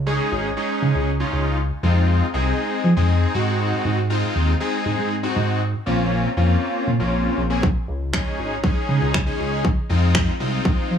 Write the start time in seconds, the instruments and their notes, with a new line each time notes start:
Already playing: analog synth bass C#2
0.06 analog polysynth G#3 C#4 D#4 G#4
0.32 analog synth bass G#1
0.57 analog polysynth G#3 C#4 D#4 G#4
0.82 analog synth bass C#3
0.95 analog synth bass C#2
1.20 analog polysynth G#3 C#4 D#4 F4
1.33 analog synth bass C#2
1.83 analog synth bass F2, analog polysynth G#3 C4 D#4 F4
2.34 analog synth bass C2, analog polysynth G#3 C4 D#4 G#4
2.84 analog synth bass F3
2.96 analog synth bass F2, analog polysynth G#3 C4 D#4 G#4
3.34 analog synth bass G#2, analog polysynth G#3 C4 D#4 F#4
3.85 analog synth bass G#2
4.10 analog polysynth G#3 C4 D#4 F4
4.36 analog synth bass D#2
4.60 analog polysynth G#3 C4 D#4 G#4
4.86 analog synth bass G#2
4.98 analog synth bass G#2
5.23 analog polysynth G#3 C4 D#4 F#4
5.36 analog synth bass G#2
5.86 analog synth bass A#1, analog polysynth A#3 C4 C#4 F4
6.37 analog synth bass F2, analog polysynth A#3 C4 C#4 F4
6.87 analog synth bass A#2
7.00 analog synth bass A#1, analog polysynth A#3 C4 C#4 F4
7.38 analog synth bass A#1
7.50 analog polysynth A#3 C4 C#4 G#4
7.63 kick
7.88 analog synth bass C#2
8.13 analog polysynth G#3 C#4 D#4 G#4, finger snap, kick
8.39 analog synth bass G#1
8.63 analog polysynth G#3 C#4 D#4 G#4, kick
8.89 analog synth bass C#3
9.01 analog synth bass C#2
9.14 finger snap, kick
9.26 analog polysynth G#3 C#4 D#4 G#4
9.39 analog synth bass C#2
9.65 kick
9.89 analog synth bass F2, analog polysynth G#3 C4 D#4 F4
10.15 finger snap, kick
10.40 analog synth bass C2, analog polysynth G#3 C4 D#4 F4
10.65 kick
10.91 analog synth bass F3